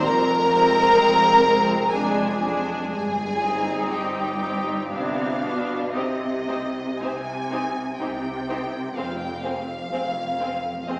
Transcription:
0.02 double bass section F1, cello section F2, violin section A#4 A#5
0.50 viola section G#3 C4
0.95 double bass section F1, cello section F2
1.45 viola section G#3 C4
1.92 double bass section F1, cello section F2, viola section G#3 D4, violin section G#4 G#5
2.43 viola section G#3 D4
2.91 double bass section G1, cello section G2, violin section G#4 G#5
3.42 viola section C4 D#4
3.91 double bass section G1, cello section G2, violin section G4 G5
4.42 viola section C4 D#4
4.90 double bass section G1, cello section C3, viola section B3 D4, violin section F5
5.42 cello section B2, viola section B3 D4
5.93 double bass section C2, cello section C3, viola section C4 D#4, violin section G4 C5 D#5
6.48 viola section C4 D#4, violin section G4 C5
7.00 double bass section C2, cello section C3, viola section C4 D#4, violin section G#5
7.04 violin section G4 C5
7.52 viola section C4 D#4, violin section G4 C5
7.99 double bass section C2, cello section C3, viola section C4 D#4, violin section G4 C5 G5
8.49 viola section C4 D#4, violin section G4 C5
8.96 double bass section F1, cello section F2, viola section C4, violin section G#4 C5 F5
9.18 violin section G5
9.41 violin section G#4 C5 F5
9.46 viola section C4
9.91 double bass section F1, cello section F2, viola section C4, violin section G#4 C5
10.40 viola section C4, violin section G#4 C5
10.87 double bass section F1, cello section F2, viola section C4, violin section G#4 C5 D#5

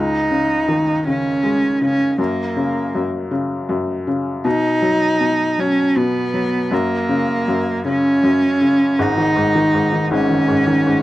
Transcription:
Already playing: felt piano C#2, cello D#4
0.31 felt piano C#3
0.68 felt piano D#3
1.07 felt piano C#3, cello C#4
1.44 felt piano G#3
1.82 felt piano C#3, cello C#4
2.18 felt piano F#2, cello A#3
2.56 felt piano C#3
2.95 felt piano F#2
3.31 felt piano C#3
3.69 felt piano F#2
4.07 felt piano C#3
4.45 felt piano B2, cello D#4
4.82 felt piano F#3
5.21 felt piano B2
5.58 felt piano F#3, cello C#4
5.96 felt piano B2, cello B3
6.34 felt piano F#3
6.71 felt piano F#2, cello A#3
7.09 felt piano C#3
7.48 felt piano F#2
7.85 felt piano C#3, cello C#4
8.23 felt piano F#2
8.61 felt piano C#3
8.99 felt piano G#1 G#2, cello D#4
9.17 felt piano D#3
9.36 felt piano G#2
9.55 felt piano D#3
9.74 felt piano G#2
9.93 felt piano D#3
10.11 felt piano G#1 G#2, cello C#4
10.30 felt piano D#3
10.48 felt piano G#2
10.67 felt piano D#3
10.86 felt piano G#2

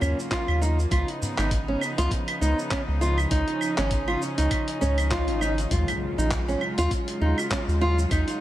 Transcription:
Already playing: string section C#3 F#3 A#3 F4
0.01 analog synth bass D#2, nylon-string guitar C#4, udu, claves, shaker
0.19 shaker
0.31 nylon-string guitar F4, kick, clap, closed hi-hat, shaker
0.48 analog synth bass D#2, claves
0.61 nylon-string guitar D#4, shaker
0.79 shaker
0.91 analog synth bass C#2, string section C#3 F3 B3 D#4, nylon-string guitar F4, kick, closed hi-hat, claves, shaker
1.08 closed hi-hat
1.22 udu, shaker
1.38 analog synth bass G#1, nylon-string guitar D#4, clap, claves, shaker
1.51 kick, closed hi-hat, shaker
1.68 nylon-string guitar C#4
1.81 claves, shaker
1.98 analog synth bass C#2, nylon-string guitar F4, closed hi-hat, shaker
2.11 kick, closed hi-hat, shaker
2.28 closed hi-hat, claves
2.41 analog synth bass C#2, nylon-string guitar D#4, shaker
2.59 shaker
2.71 nylon-string guitar C#4, kick, clap, closed hi-hat, claves, shaker
2.88 analog synth bass C#2
3.01 nylon-string guitar F4, shaker
3.18 claves, shaker
3.31 analog synth bass C#2, string section C#4, nylon-string guitar D#4, kick, closed hi-hat, shaker
3.48 closed hi-hat
3.61 claves, shaker
3.78 analog synth bass G#1, nylon-string guitar C#4, clap, closed hi-hat, shaker
3.91 kick, closed hi-hat, shaker
4.08 nylon-string guitar F4, claves
4.22 shaker
4.38 analog synth bass C#2, nylon-string guitar D#4, closed hi-hat, shaker
4.51 kick, closed hi-hat, swell, claves, shaker
4.68 closed hi-hat
4.81 analog synth bass C#2, nylon-string guitar C#4, udu, shaker
4.98 closed hi-hat, claves, shaker
5.11 nylon-string guitar F4, kick, clap, closed hi-hat, shaker
5.28 analog synth bass G#1, closed hi-hat
5.41 nylon-string guitar D#4, claves, shaker
5.58 closed hi-hat, shaker
5.71 analog synth bass D#2, string section C#3 F#3 G#3 F4, nylon-string guitar F4, kick, closed hi-hat, impact, shaker
5.88 closed hi-hat, claves, shaker
6.18 analog synth bass A#1, nylon-string guitar D#4, shaker
6.31 kick, clap, closed hi-hat, shaker
6.48 nylon-string guitar C#4, shaker
6.61 claves
6.78 analog synth bass D#2, nylon-string guitar F4, closed hi-hat, shaker
6.91 kick, closed hi-hat, shaker
7.08 closed hi-hat, shaker
7.21 analog synth bass D#2, nylon-string guitar D#4
7.38 claves, shaker
7.51 nylon-string guitar C#4, kick, clap, closed hi-hat, shaker
7.68 analog synth bass D#2, shaker
7.81 nylon-string guitar F4
7.99 shaker
8.11 analog synth bass D#2, nylon-string guitar D#4, kick, closed hi-hat, claves, shaker
8.28 closed hi-hat, shaker

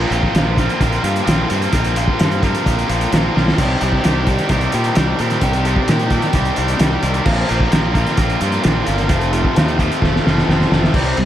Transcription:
Already playing: distorted electric guitar A#2 F3 A#3 C4 F4
0.11 fingered electric bass A#1, distorted electric guitar A#2 F3 A#3 C4 F4, closed hi-hat
0.23 kick
0.35 fingered electric bass A#1, distorted electric guitar A#2 F3 A#3 C4 F4, snare, closed hi-hat
0.58 distorted electric guitar A#2 F3 A#3 C4 F4, kick, closed hi-hat
0.69 closed hi-hat
0.81 fingered electric bass A#1, distorted electric guitar A#2 F3 A#3 C4 F4, kick, closed hi-hat
0.92 closed hi-hat
1.03 fingered electric bass G2, distorted electric guitar A#2 F3 A#3 C4 F4, closed hi-hat
1.16 closed hi-hat
1.25 fingered electric bass A#1, distorted electric guitar A#2 F3 A#3 C4 F4, snare, closed hi-hat
1.49 fingered electric bass G2, distorted electric guitar A#2 F3 A#3 C4 F4, closed hi-hat
1.62 closed hi-hat
1.72 fingered electric bass A#1, distorted electric guitar A#2 F3 A#3 C4 F4, kick, closed hi-hat
1.84 closed hi-hat
1.96 distorted electric guitar A#2 F3 A#3 C4 F4, closed hi-hat
2.08 kick
2.20 fingered electric bass G2, distorted electric guitar A#2 F3 A#3 C4 F4, snare, closed hi-hat
2.31 closed hi-hat
2.43 distorted electric guitar A#2 F3 A#3 C4 F4, kick, closed hi-hat
2.55 closed hi-hat
2.66 fingered electric bass A#1, distorted electric guitar A#2 F3 A#3 C4 F4, kick, closed hi-hat
2.79 closed hi-hat
2.88 fingered electric bass A#1, distorted electric guitar A#2 F3 A#3 C4 F4, closed hi-hat
3.01 closed hi-hat
3.12 fingered electric bass A#1, distorted electric guitar A#2 F3 A#3 C4 F4, snare, closed hi-hat
3.36 fingered electric bass B1, distorted electric guitar A#2 F3 A#3 C4 F4, snare
3.48 snare
3.58 fingered electric bass C2, distorted electric guitar C3 D#3 G3 C4 G4, kick, closed hi-hat, crash
3.81 fingered electric bass C2, distorted electric guitar C3 D#3 G3 C4 G4, closed hi-hat
3.93 kick
4.04 fingered electric bass C2, distorted electric guitar C3 D#3 G3 C4 G4, snare, closed hi-hat
4.27 distorted electric guitar C3 D#3 G3 C4 G4, kick, closed hi-hat
4.39 snare, closed hi-hat
4.49 fingered electric bass C2, distorted electric guitar C3 D#3 G3 C4 G4, kick, closed hi-hat
4.61 closed hi-hat
4.72 fingered electric bass A#2, distorted electric guitar C3 D#3 G3 C4 G4, closed hi-hat
4.84 closed hi-hat
4.95 fingered electric bass C2, distorted electric guitar C3 D#3 G3 C4 G4, snare, closed hi-hat
5.19 fingered electric bass A#2, distorted electric guitar C3 D#3 G3 C4 G4, closed hi-hat
5.30 snare, closed hi-hat
5.41 fingered electric bass C2, distorted electric guitar C3 D#3 G3 C4 G4, kick, closed hi-hat
5.53 closed hi-hat
5.65 distorted electric guitar C3 D#3 G3 C4 G4, closed hi-hat
5.76 kick
5.88 fingered electric bass A#2, distorted electric guitar C3 D#3 G3 C4 G4, snare, closed hi-hat
5.99 closed hi-hat
6.10 distorted electric guitar C3 D#3 G3 C4 G4, kick, closed hi-hat
6.22 snare, closed hi-hat
6.33 fingered electric bass C2, distorted electric guitar C3 D#3 G3 C4 G4, kick, closed hi-hat
6.45 closed hi-hat
6.56 fingered electric bass C2, distorted electric guitar C3 D#3 G3 C4 G4, closed hi-hat
6.68 closed hi-hat
6.79 fingered electric bass C2, distorted electric guitar C3 D#3 G3 C4 G4, snare, closed hi-hat
7.02 fingered electric bass C2, distorted electric guitar C3 D#3 G3 C4 G4, closed hi-hat
7.14 closed hi-hat
7.25 fingered electric bass A#1, distorted electric guitar A#2 F3 A#3 C4 F4, kick, crash
7.48 fingered electric bass A#1, distorted electric guitar A#2 F3 A#3 C4 F4, closed hi-hat
7.61 kick
7.71 fingered electric bass A#1, distorted electric guitar A#2 F3 A#3 C4 F4, snare, closed hi-hat
7.94 distorted electric guitar A#2 F3 A#3 C4 F4, kick, closed hi-hat
8.07 snare, closed hi-hat
8.17 fingered electric bass A#1, distorted electric guitar A#2 F3 A#3 C4 F4, kick, closed hi-hat
8.30 closed hi-hat
8.41 fingered electric bass G2, distorted electric guitar A#2 F3 A#3 C4 F4, closed hi-hat
8.52 closed hi-hat
8.63 fingered electric bass A#1, distorted electric guitar A#2 F3 A#3 C4 F4, snare, closed hi-hat
8.86 fingered electric bass G1, distorted electric guitar A#2 F3 A#3 C4 F4, closed hi-hat
8.98 snare, closed hi-hat
9.09 fingered electric bass F1, distorted electric guitar F2 C3 F3 A3 C4 F4, kick, closed hi-hat
9.21 closed hi-hat
9.32 distorted electric guitar F2 C3 F3 A3 C4 F4, closed hi-hat
9.45 kick
9.56 fingered electric bass D#2, distorted electric guitar F2 C3 F3 A3 C4 F4, snare, closed hi-hat
9.68 closed hi-hat
9.79 distorted electric guitar F2 C3 F3 A3 C4 F4, kick, closed hi-hat
9.92 closed hi-hat
10.02 fingered electric bass F1, distorted electric guitar F2 C3 F3 A3 C4 F4, kick, snare
10.16 snare
10.26 fingered electric bass F1, distorted electric guitar F2 C3 F3 A3 C4 F4, snare
10.38 snare
10.48 fingered electric bass F1, distorted electric guitar F2 C3 F3 A3 C4 F4, snare
10.61 snare
10.71 fingered electric bass F1, distorted electric guitar F2 C3 F3 A3 C4 F4, snare
10.84 snare
10.94 fingered electric bass C2, distorted electric guitar C3 G3 C4, kick, crash
11.17 fingered electric bass C2, distorted electric guitar C3 G3, ride

